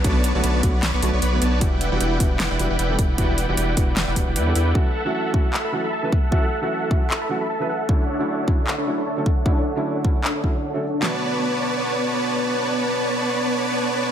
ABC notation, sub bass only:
X:1
M:4/4
L:1/16
Q:"Swing 16ths" 1/4=153
K:Bm
V:1 name="Sub bass" clef=bass
B,,,3 B,,, B,,,2 B,,,2 B,,, B,,, B,,, B,,, B,,,2 B,,,2 | E,,,3 E,,, E,,,2 E,,,2 E,,, E,,, E,,, E,,, E,,,2 E,,,2 | E,,,3 E,,, E,,,2 E,,,2 E,,, E,,, E,,, E,,, E,,2 E,,2 | z16 |
z16 | z16 | z16 | z16 |
z16 |]